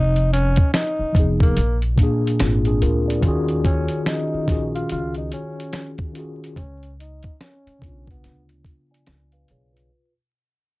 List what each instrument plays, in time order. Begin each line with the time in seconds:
Already playing: upright bass F1, tenor saxophone D#4
0.16 closed hi-hat
0.33 tenor saxophone C#4, closed hi-hat
0.56 kick, closed hi-hat
0.74 tenor saxophone D#4, snare, closed hi-hat
0.99 muted upright bass stroke
1.13 upright bass F1, tine electric piano F3 B3, kick, closed hi-hat
1.17 tine electric piano D#4 G#4
1.40 tenor saxophone A#3, kick, closed hi-hat
1.57 upright bass A#1, closed hi-hat
1.82 closed hi-hat
1.96 tine electric piano A#2 A#3, kick, closed hi-hat
2.00 tine electric piano D4 G#4
2.27 closed hi-hat
2.40 upright bass G#1, tine electric piano C4 F4, snare, closed hi-hat
2.65 tine electric piano D4 G#4, closed hi-hat
2.82 upright bass D2, tine electric piano F4 A#4, closed hi-hat
3.08 tine electric piano G#4 D5, closed hi-hat
3.21 upright bass D#2, tine electric piano D#3 C#4 F4, kick, closed hi-hat
3.27 tine electric piano F#4 G#4
3.48 closed hi-hat
3.65 tenor saxophone C#4, kick, closed hi-hat
3.88 closed hi-hat
4.06 tenor saxophone D#4, snare, closed hi-hat
4.34 muted upright bass stroke
4.45 upright bass A#1, tine electric piano D#3 C#4 F4, kick, snare
4.49 tine electric piano F#4 G#4, closed hi-hat
4.75 tenor saxophone F4, closed hi-hat
4.89 upright bass C#2, tenor saxophone F4, closed hi-hat
5.15 tenor saxophone D#4, closed hi-hat
5.32 tenor saxophone C#4, closed hi-hat
5.60 closed hi-hat
5.73 snare, closed hi-hat
5.98 kick, closed hi-hat
6.12 tine electric piano D#3 C#4 F4, closed hi-hat
6.17 tine electric piano F#4 G#4
6.44 closed hi-hat
6.56 upright bass C#2, tenor saxophone C#4, kick, closed hi-hat
6.83 closed hi-hat
7.00 tenor saxophone D#4, closed hi-hat
7.23 kick, closed hi-hat
7.41 tenor saxophone C#4, snare, closed hi-hat
7.67 muted upright bass stroke, closed hi-hat
7.79 upright bass B1, tine electric piano C#3 B3, kick
7.83 tine electric piano D4 F4, closed hi-hat
8.07 tenor saxophone B3, kick, closed hi-hat
8.24 upright bass D2, snare, closed hi-hat
8.49 closed hi-hat
8.65 kick, closed hi-hat
8.91 tine electric piano D5 G#5, closed hi-hat
9.06 upright bass C#2, snare, closed hi-hat
9.32 tine electric piano B4 F5, closed hi-hat
9.48 upright bass B1, tine electric piano G#4 C#5, closed hi-hat
9.73 tine electric piano F4 B4, closed hi-hat